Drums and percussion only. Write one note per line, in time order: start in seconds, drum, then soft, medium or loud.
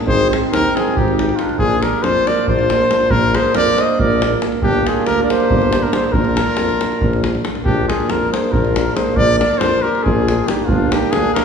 0.08 davul low medium
0.21 davul high soft
0.33 davul high medium
0.44 davul high soft
0.54 davul high medium
0.65 davul high soft
0.77 davul high medium
0.88 davul high soft
0.97 davul low medium
1.08 davul high soft
1.19 davul high medium
1.29 davul high soft
1.39 davul high soft
1.49 davul high soft
1.59 davul low medium
1.83 davul high medium
1.93 davul high soft
2.04 davul high medium
2.27 davul high medium
2.38 davul high soft
2.48 davul low medium
2.59 davul high soft
2.70 davul high medium
2.91 davul high medium
3.00 davul high soft
3.10 davul low medium
3.35 davul high medium
3.45 davul high soft
3.55 davul high medium
3.78 davul high medium
3.89 davul high soft
3.99 davul low medium
4.10 davul high soft
4.22 davul high medium
4.42 davul high medium
4.52 davul high soft
4.62 davul low medium
4.87 davul high medium
4.97 davul high soft
5.07 davul high medium
5.30 davul high medium
5.40 davul high soft
5.50 davul low loud
5.62 davul high soft
5.73 davul high medium
5.93 davul high medium
6.04 davul high soft
6.13 davul low loud
6.25 davul high soft
6.37 davul high medium
6.47 davul high soft
6.57 davul high medium
6.69 davul high soft
6.81 davul high medium
6.92 davul high soft
7.01 davul low medium
7.13 davul high soft
7.24 davul high medium
7.35 davul high soft
7.45 davul high medium
7.55 davul high soft
7.66 davul low loud
7.90 davul high medium
8.00 davul high soft
8.10 davul high medium
8.34 davul high medium
8.44 davul high soft
8.53 davul low loud
8.65 davul high soft
8.76 davul high medium
8.97 davul high medium
9.06 davul high soft
9.16 davul low loud
9.41 davul high medium
9.51 davul high soft
9.61 davul high medium
9.95 davul high soft
10.06 davul low loud
10.28 davul high medium
10.48 davul high medium
10.69 davul low loud
10.92 davul high medium
11.02 davul high soft
11.13 davul high medium
11.36 davul high medium